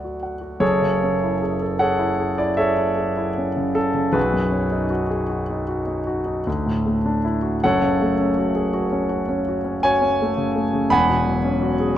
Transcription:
grand piano
Already playing: D2 F#4 D5 F#5 C#6 F#6 D7
0.04 F#4
0.23 F#5
0.41 F#4
0.60 F#1 F#2 G#4 A4 C#5
0.82 C#3
1.03 C#4
1.23 E4
1.42 G#4
1.62 A4
1.79 G#4 A4 C#5 F#5
1.99 E4
2.19 G#4
2.38 E4 D5
2.57 G#4 A4 C#5 E5
2.78 E4
2.97 G#4
3.17 E4
3.38 C#4
3.56 C#3
3.75 C#4 A4
3.94 C#3
4.13 B1 F#4 G#4 B4
4.33 F#2
4.52 C#4
4.72 D#4
4.90 F#4
5.10 G#4
5.29 F#4
5.50 D#4
5.68 F#4
5.87 D#4
6.07 F#4
6.26 D#4
6.47 D2
6.66 A2
6.86 A3
7.06 D4
7.25 E4
7.42 F#4
7.64 F#1 F#2 A4 C#5 F#5
7.82 C#3
8.02 A3
8.20 C#4
8.38 F#4
8.55 G#4
8.74 F#4
8.92 C#4
9.09 F#4
9.29 C#4
9.48 F#4
9.65 C#4
9.83 F#4 C#5 G#5
10.02 C#4
10.22 A3
10.37 C#3
10.56 A3
10.73 C#3
10.90 E1 E2 F#5 G#5 B5
11.09 B2
11.27 F#3
11.44 C#4
11.62 F#4
11.80 G#4

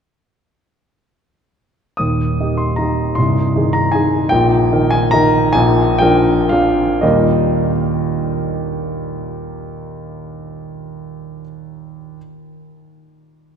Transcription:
grand piano
1.97 D#1 D#2 D#6
2.40 D#3 D#4 G4
2.58 C6
2.76 D#3 D#4 G4 A#5
3.15 C1 C2 C6
3.56 D#3 D#4 G#4
3.73 A#5
3.92 D#3 D#4 G#4 G#5
4.29 A#1 A#2 G5
4.72 D#3 D#4 A#4
4.91 G#5
5.11 D#3 D#4 A#4 A#5
5.53 A#1 A#2 G#5
5.99 F3 D4 A#4 G5
6.49 F3 D4 A#4 F5
7.01 D#2 A#2 G3 A#3 D#4 G4 D#5

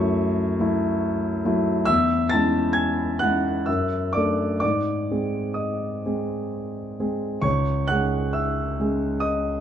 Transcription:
grand piano
Already playing: F#2 F#3 A3 E4 C#5 C#6
0.60 F#3 A3 E4
1.45 F#3 A3 E4
1.85 E2 E5 E6
2.29 G#3 A5 A6
2.33 C#4 E4
2.73 G#5 G#6
3.19 G#3 C#4 F#5 F#6
3.23 E4
3.66 F#2 E5 E6
4.13 A3 D4 A4 D5 D6
4.60 G#2 D5 D6
5.11 G#3 C4 G#4
5.54 D#5 D#6
6.06 G#3 C4 G#4
7.00 G#3 C4 G#4
7.42 C#2 C#5 C#6
7.88 G#3 C#4 G#4 F#5 F#6
8.33 E5 E6
8.80 G#3 C#4 G#4
9.20 D#5 D#6

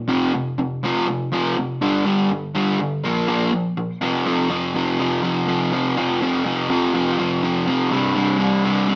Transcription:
overdriven electric guitar
0.08 F2 C3 F3
0.34 F2 C3
0.58 F2 C3
0.84 F2 C3 F3
1.08 F2 C3
1.32 F2 C3 F3
1.57 F2 C3
1.82 G2 D3 G3
2.05 G2 D3 G3
2.30 G2 D3
2.55 G2 D3 G3
2.79 G2 D3
3.04 A#2 F3 A#3
3.28 A#2 F3 A#3
3.52 A#2 F3
3.77 A#2 F3
4.01 F2 C3 F3
4.26 F2 C3 F3
4.50 F2 C3 F3
4.75 F2 C3 F3
4.99 F2 C3 F3
5.22 F2 C3 F3
5.47 F2 C3 F3
5.72 F2 C3 F3
5.97 F2 C3 F3
6.21 F2 C3 F3
6.45 F2 C3 F3
6.70 F2 C3 F3
6.94 F2 C3 F3
7.18 F2 C3 F3
7.42 F2 C3 F3
7.66 F2 C3 F3
7.90 C2 G2 C3
8.15 C2 G2 C3
8.39 C2 G2 C3
8.64 C2 G2 C3
8.88 C2 G2 C3

